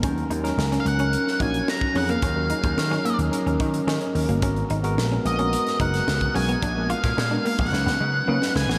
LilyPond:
<<
  \new Staff \with { instrumentName = "Lead electric guitar" } { \time 4/4 \key dis \minor \tempo 4 = 109 r4 r16. eis''32 fis''4 gis''8 ais''8 fis''16 eis''16~ | eis''4.~ eis''16 r2 r16 | r4. dis''4 fis''4 gis''8~ | gis''8 eis''4 eis''16 fis''4.~ fis''16 gis''8 | }
  \new Staff \with { instrumentName = "Tine electric piano" } { \time 4/4 \key dis \minor << { r1 | r2. dis''16 cis''16 ais'16 fis'16~ | fis'16 r2. r8. | r1 | } \\ { <fis cis' dis' ais'>8 r16 <fis cis' dis' ais'>8. r16 <fis cis' dis' ais'>8 r16 <fis cis' dis' fis'>8. r16 <fis cis' dis' gis'>8 | r16 <fis cis' dis' ais'>8. r16 <fis cis' dis' ais'>8 r16 <fis cis' dis' ais'>8. r4 r16 | <gis b fis' ais'>8 r16 <gis b fis' ais'>8. r16 <gis b fis' ais'>8 r16 <gis b fis' ais'>8. r16 <gis b fis' ais'>8 | r16 <gis b d' ais'>8. r16 <gis b d' ais'>8 r16 <fis cis' dis' b'>8. r16 <fis cis' dis' b'>8. r16 | } >> }
  \new Staff \with { instrumentName = "Clean electric guitar" } { \time 4/4 \key dis \minor cis'16 r16 dis'16 r8 cis'16 r16 cis'16 r8 dis'16 r8. cis'16 ais16 | cis'16 r16 dis'16 r8 cis'16 ais16 r8 cis'16 dis'16 r16 cis'16 r8 ais16 | cis'16 r16 dis'16 r8 cis'16 r16 cis'16 r8 dis'16 r8. cis'16 b16 | d'16 r16 eis'16 r8 d'16 ais16 r8 b16 gis16 r16 ais16 r8 b16 | }
  \new Staff \with { instrumentName = "Slap bass" } { \clef bass \time 4/4 \key dis \minor dis,8 dis,8 cis,8 cis,8. r16 ais,,8 r8 eis,8 | dis,8. dis,16 dis8 r16 dis,16 r16 dis,16 dis8 dis16 r16 dis,16 g,,16 | gis,,8 gis,,8 ais,,8 ais,,8. r16 fis,,8 cis,8 b,,8 | ais,,8. ais,16 ais,8 r16 ais,,16 cis,16 cis,16 cis8 cis16 r16 cis,16 a,,16 | }
  \new DrumStaff \with { instrumentName = "Drums" } \drummode { \time 4/4 <hh bd>16 hh16 hh16 <hh sn>16 sn16 <hh sn>16 hh16 hh16 hh16 sn16 <hh bd>16 hh16 sn16 bd16 hho16 hh16 | <hh bd>8 hh16 <hh bd>16 sn16 sn16 hh16 hh16 hh16 hh16 <hh bd>16 hh16 sn16 hh16 hho16 hh16 | <hh bd>16 hh16 hh16 hh16 sn8 hh16 hh16 hh16 <hh sn>16 <hh bd>16 <hh sn>16 sn16 <hh bd>16 hho16 hh16 | <hh bd>8 hh16 <hh bd sn>16 sn8 hho16 bd16 sn16 sn8. r16 sn16 sn16 sn16 | }
>>